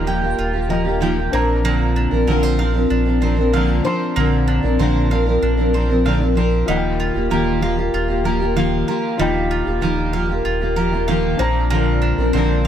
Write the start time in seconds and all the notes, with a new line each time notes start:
Already playing: D#1 G3 F4 A#4 D#5 G5
0.06 F3 A#3 F4 G4 G5
0.22 A#3 F4 G4
0.39 D#1 F4
0.53 A#3 F4 G4
0.69 F3 A#3 F4 G4 A#4 D#5 G5
0.85 A#3 F4 G4
1.00 D#3 F3 A#3 F4 G4 G5
1.16 A#3 F4 G4
1.31 A#1 F3 A#3 C4 D4 C5
1.35 A#4 A#5
1.64 A#2 D3 F3 A#3 C4 D4 A#4
1.96 D4
2.11 A#1 F3 C4 D4 A#4
2.27 A#1 A#2 D3 F3 C4 D4 A#4
2.43 C5
2.58 F3 C4 D4 A#4 F5
2.74 F3 C4 D4 A#4
2.90 A#1 D4
3.05 F3 C4 D4 A#4
3.21 F3 C4 D4 A#4 C5
3.37 F3 C4 D4 A#4
3.52 A#2 D3 F3 C4 D4 A#4 F5
3.83 F3 C4 D4 A#4 C5 C6
4.16 A#1 A#2 D3 F3 A#3 C4 D4 A#4
4.48 D4
4.62 A#1 F3 C4 D4 A#4
4.79 A#1 A#2 D3 F3 C4 D4 A#4 C5
5.10 F3 C4 D4 A#4 F5
5.26 F3 C4 D4 A#4
5.42 A#1 D4
5.57 F3 C4 D4 A#4
5.73 F3 C4 D4 A#4 C5
5.89 F3 C4 D4 A#4
6.05 A#2 D3 F3 C4 D4 A#4 F5
6.20 F3 C4 D4 A#4
6.35 F3 C4 D4 A#4 C5
6.66 D#1 D#3 F3 G3 A#3 F4 G4 D#5
6.70 F#5
6.77 G5
7.00 F4
7.14 D#1 A#3 F4 G4
7.30 D#1 D#3 F3 A#3 F4 G4 A#4
7.61 F3 A#3 F4 G4 F5
7.77 A#3 F4 G4
7.94 D#1 F4
8.08 A#3 F4 G4
8.24 F3 A#3 F4 G4 A#4
8.40 A#3 F4 G4
8.56 D#3 F3 A#3 F4 G4 F5
8.87 F3 A#3 F4 G4 A#4
9.18 D#1 D#3 F3 G3 A#3 F4 G4 D#5 G5
9.51 F4
9.65 D#1 A#3 F4 G4
9.81 D#1 D#3 F3 A#3 F4 G4 A#4
10.13 F3 A#3 F4 G4 F5
10.29 A#3 F4 G4
10.45 D#1 F4
10.61 A#3 F4 G4
10.76 F3 A#3 F4 G4 A#4
10.92 A#3 F4 G4
11.08 D#3 F3 A#3 F4 G4 F5
11.37 A#1 F3 A#3 C4 D4 C5 A#5
11.42 A#4
11.70 A#2 D3 F3 A#3 C4 D4 A#4
12.02 D4
12.18 A#1 F3 C4 D4 A#4
12.33 A#1 A#2 D3 F3 C4 D4 A#4 C5
12.64 F3